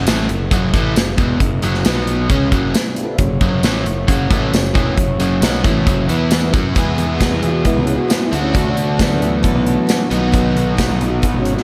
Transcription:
0.07 A1 A2 E3 A3, snare, closed hi-hat, tambourine
0.29 F#1 F#2 C#3, closed hi-hat
0.51 F#1 F#2 C#3 F#3, kick, closed hi-hat
0.73 A1 A2 E3 A3, kick, closed hi-hat
0.96 F#1 F#2 C#3, snare, closed hi-hat, tambourine
1.18 E1 E2 B2 E3, kick, closed hi-hat
1.40 F#1 F#2 C#3, kick, closed hi-hat
1.62 F#1 F#2 C#3 F#3, closed hi-hat
1.75 snare
1.85 B1 B2 F#3 B3, snare, closed hi-hat, tambourine
2.07 closed hi-hat
2.30 C#2 C#3 G#3 C#4, kick, closed hi-hat
2.51 F#1 F#2 C#3 F#3, kick, closed hi-hat
2.74 snare, closed hi-hat, tambourine
2.85 B3 C4
2.91 D4 E4
2.96 F4 G4, closed hi-hat
3.02 A4 B4
3.08 C5 D5
3.13 E5 F5
3.18 F#1 F#2 C#3 A#3 C#4 F#4 C#5, kick, closed hi-hat
3.41 F#1 F#2 C#3 F#3, kick, closed hi-hat
3.63 A1 A2 E3 A3, snare, closed hi-hat, tambourine
3.85 F#1 F#2 C#3, closed hi-hat
4.07 F#1 F#2 C#3 F#3, kick, closed hi-hat
4.30 A1 A2 E3 A3, kick, closed hi-hat
4.52 F#1 F#2 C#3, snare, closed hi-hat, tambourine
4.74 E1 E2 B2 E3, kick, closed hi-hat
4.97 F#1 F#2 C#3, kick, closed hi-hat
5.20 F#1 F#2 C#3 F#3, closed hi-hat
5.42 B1 B2 F#3 B3, snare, closed hi-hat, tambourine
5.63 A1 A2 E3 A3, kick, closed hi-hat
5.86 F#1 F#2 C#3 F#3, kick, closed hi-hat
6.08 E2 E3 B3 E4 B4, closed hi-hat
6.31 snare, closed hi-hat, tambourine
6.53 F#2 F#3 C#4 F#4, kick, closed hi-hat
6.75 E2 B2 E3 G#3 B3 E4 G#4, kick, closed hi-hat
6.98 E2, closed hi-hat
7.19 E3 B3 E4 G#4, kick, snare, closed hi-hat, tambourine
7.32 E2
7.43 E2, closed hi-hat
7.47 F4
7.52 F#4
7.65 E3 G#3 B3 E4 G#4, kick, closed hi-hat
7.76 C#2
7.82 C#4
7.87 closed hi-hat
7.98 F#4
8.08 E3 B3 E4 F4 G#4, snare, closed hi-hat, tambourine
8.13 F#4
8.27 E4 A4
8.31 D2 D3 A3 B3 D4 F#4, closed hi-hat
8.42 C#4
8.53 D3 F#3 B3 F#4 A4, kick, closed hi-hat
8.70 D4
8.77 D2, closed hi-hat
8.97 E3 F#3 B3 F#4 A4, kick, snare, closed hi-hat, tambourine
9.11 D2
9.20 D2 B3 F#4 A4, closed hi-hat
9.43 D3 F#3 B3 F#4 A4, kick, closed hi-hat
9.55 B1
9.67 closed hi-hat
9.87 F#3 B3 F#4 A4, snare, closed hi-hat, tambourine
10.09 B1 B2 D#3 F#3 B3 D#4 F#4, closed hi-hat
10.13 F#4
10.32 B2 F#3 B3 D#4 F#4, kick, closed hi-hat
10.56 B1, closed hi-hat
10.77 F#3 B3 D#4 F#4, kick, snare, closed hi-hat, tambourine
10.90 B1
11.01 B1, closed hi-hat
11.06 F4
11.10 F#4
11.22 B2 F#3 B3 D#4 F#4, kick, closed hi-hat
11.34 G#1
11.41 C#4
11.45 closed hi-hat
11.56 F#4, snare

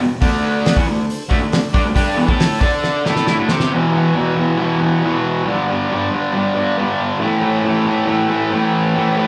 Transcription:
0.00 E2 B2
0.20 D3 A3 D4 A4 D5, kick, open hi-hat
0.45 D4 A4 B4
0.65 D4 A4 D5, snare, open hi-hat
0.76 E3 B3, kick
0.86 D3 A3 D4 A4 D5
1.06 D4 A4 C5, open hi-hat
1.29 D3 A3 D4 A4 E5, kick
1.40 D3 A3
1.49 D4 A4 D5, snare, open hi-hat
1.70 G3 D4 A4 D5, kick
1.84 D3 A3
1.93 G3 D4 G4 A4 D5, kick, open hi-hat
2.13 E3 D4 A4 D5
2.17 B3
2.27 A3 E4 A4, kick
2.35 D4 A4 E5
2.40 snare, open hi-hat
2.60 D4 A4 C5 D5, kick
2.78 D4 A4 E5
2.84 snare
3.02 D4 A4 E5
3.06 A3 E4 A4, snare
3.16 snare
3.22 A3 D4 A4 D5
3.27 E4, snare
3.39 D3 A3
3.45 D4 A4 E5
3.49 C4 G4 C5, snare
3.60 G4, snare
3.66 B4 E5
3.71 E2 B2 E3
3.89 E3 G4 B4 E5
3.95 B2
4.09 G4 B4 E5
4.15 E2 B2 E3
4.32 E3 G4 B4 E5
4.39 B2
4.57 E2 B2 E3 G4 B4 E5
4.79 B2 E3 G4 B4 G5
5.01 E2 B2 G4 B4 E5
5.05 E3
5.21 G4 B4 E5
5.44 G2 D3 G4 B4 D5
5.48 G3
5.66 G3 G4 B4 D5
5.71 D3
5.89 G2 D3 G3 G4 B4 D5
6.11 D3 G3 G4 B4 D5
6.32 G2 D3 G3 G4 B4 D5
6.53 D3 G3 G4 B4 D5
6.76 G2 D3 G3 G4 B4 D5
6.95 G4 B4 D5
7.17 A2 E3 A4 C5 E5
7.22 A3
7.41 E3 A3 A4 C5 E5
7.61 A2 E3 A4 C5 E5
7.66 A3
7.82 A4 C5 E5
7.86 E3 A3
8.05 A2 E3 A3 A4 C5 E5
8.26 A3 A4 C5 E5
8.32 E3
8.48 A2 A4 C5 G5
8.52 E3 A3
8.71 A4 C5 E5
8.94 A2 E3 A3 A4 C5 E5
9.16 E3 A3 A4 C5 E5

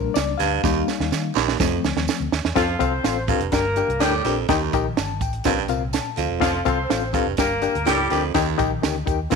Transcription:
Already playing: A#1 G3 A#3 D4 A#4
0.14 C#2 D5, snare, closed hi-hat, tambourine
0.37 D2 G2 F5, snare, closed hi-hat, tambourine
0.63 D#2 G3 A#3 D#4, kick, snare, tambourine
0.88 snare, tambourine
1.00 D#2, snare
1.12 D#3, snare, tambourine
1.35 A#1 D#2, snare, tambourine
1.48 snare
1.59 F1 F2 F3 A3 C4, kick, snare, tambourine
1.72 F2
1.84 D2, snare, tambourine
1.96 D#2, snare
2.08 snare, tambourine
2.20 D2
2.32 D#2, snare, tambourine
2.45 E2, snare
2.55 F2 F3 C4 F4 A4 F5, kick, snare, closed hi-hat, tambourine
2.79 C2 C4 F4 A4 C5 F5, kick, closed hi-hat, tambourine
3.04 A1 C4 F4 A4 F5, snare, closed hi-hat, tambourine
3.28 G2 C4 F4 A4 F5, kick, closed hi-hat, tambourine
3.40 F1, closed hi-hat
3.52 G1 G2 A#3 D4 G4 A#4 G5, kick, snare, closed hi-hat, tambourine
3.76 D4 G4 A#4 G5, closed hi-hat, tambourine
3.88 C2, closed hi-hat
4.00 D2 A2 G3 D4 G4 A#4 G5, snare, closed hi-hat, tambourine
4.24 A#1 F2 D4 G4 A#4 G5, snare, closed hi-hat, tambourine
4.48 D#2 D#3 D#4 G4 A#4 G5, kick, snare, closed hi-hat, tambourine
4.73 A#1 D#4 G4 A#4 G5, kick, closed hi-hat, tambourine
4.97 G1 A5, snare, closed hi-hat, tambourine
5.21 A1 G5, kick, closed hi-hat, tambourine
5.33 closed hi-hat
5.44 A#1 G2 A#2 C4 F4 A#4 F5, kick, snare, closed hi-hat, tambourine
5.68 C2 C4 F4 A#4 F5, closed hi-hat, tambourine
5.93 A5, snare, closed hi-hat, tambourine
6.17 D2 F2 F5, closed hi-hat, tambourine
6.29 E1
6.40 F1 F2 F3 C4 F4 A4 F5, kick, snare, closed hi-hat, tambourine
6.65 C2 C4 F4 A4 C5 F5, kick, closed hi-hat, tambourine
6.90 A1 C4 F4 A4 F5, snare, closed hi-hat, tambourine
7.13 G2 C4 F4 A4 F5, kick, closed hi-hat, tambourine
7.27 F1
7.37 G1 G2 A#3 D4 G4 A#4 G5, kick, snare, closed hi-hat, tambourine
7.62 D4 G4 A#4 G5, closed hi-hat, tambourine
7.75 D2, closed hi-hat
7.86 C#2 A2 G3 D4 G4 A#4 G5, snare, closed hi-hat, tambourine
8.10 D2 F2 D4 G4 A#4 G5, snare, closed hi-hat, tambourine
8.34 D#2 D#3 D#4 G4 A#4 G5, kick, snare, closed hi-hat, tambourine
8.58 A#1 D#4 G4 A#4 G5, kick, closed hi-hat, tambourine
8.82 D2 D#4 G4 A#4 G5, snare, closed hi-hat, tambourine
9.06 D#2 D#4 G4 A#4 G5, kick, closed hi-hat, tambourine
9.30 A#1 G2 A#2 C4 F4 A#4 F5, kick, snare, closed hi-hat, tambourine

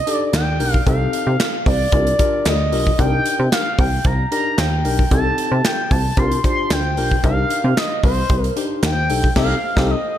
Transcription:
Already playing: D#5
0.07 D4 D#4 G4 A4, closed hi-hat
0.11 D5
0.33 D#2 G5, snare, clap, closed hi-hat
0.60 B1 D4 D#4 G4 A#4, open hi-hat
0.74 kick
0.86 C2 C4 D#4 G4 A4 F5, kick, closed hi-hat
1.13 closed hi-hat
1.27 C3
1.40 snare, clap, closed hi-hat
1.66 C2 D5, kick, open hi-hat
1.92 C2 D4 F4 G4 A#4, kick, closed hi-hat
2.07 closed hi-hat
2.19 D4 F4 G4 A#4, kick, closed hi-hat
2.45 D2 D#5, snare, clap, closed hi-hat
2.72 B1 D4 F4 G4 A#4, open hi-hat
2.87 kick
2.99 C2 D4 D#4 G4 A#4 G5, kick, closed hi-hat
3.26 closed hi-hat
3.40 C3
3.52 F5, snare, clap, closed hi-hat
3.78 C2 G5, kick, open hi-hat
4.04 C2 A#5, kick, closed hi-hat
4.31 D4 D#4 G4 A#4 A#5, closed hi-hat
4.58 D#2 G5, snare, clap, closed hi-hat
4.84 B1 D4 D#4 G4 A#4, open hi-hat
4.99 kick
5.11 C2 C4 D#4 G4 A4 A5, kick, closed hi-hat
5.38 closed hi-hat
5.52 C3
5.65 G5, snare, clap, closed hi-hat
5.91 C2 A5, kick, open hi-hat
6.17 C2 D4 F4 G4 A#4 C6, kick, closed hi-hat
6.32 closed hi-hat
6.44 D4 F4 G4 C5 C6, kick, closed hi-hat
6.70 D2 G5, snare, clap, closed hi-hat
6.97 B1 D4 F4 G4 A#4, open hi-hat
7.11 kick
7.24 C2 D4 D#4 G4 A#4 F5, kick, closed hi-hat
7.50 closed hi-hat
7.64 C3
7.77 D#5, snare, clap, closed hi-hat
8.03 C2 C5, kick, open hi-hat
8.29 C2, kick, closed hi-hat
8.44 closed hi-hat
8.56 D4 D#4 G4 C5, closed hi-hat
8.83 D#2 G5, snare, clap, closed hi-hat
9.09 B1 D4 D#4 G4 A4, open hi-hat
9.24 kick
9.36 C2 C4 D#4 G4 A4 F5, kick, snare, crash
9.76 C2 C4 D#4 G4 A4, kick, snare
9.90 D#5

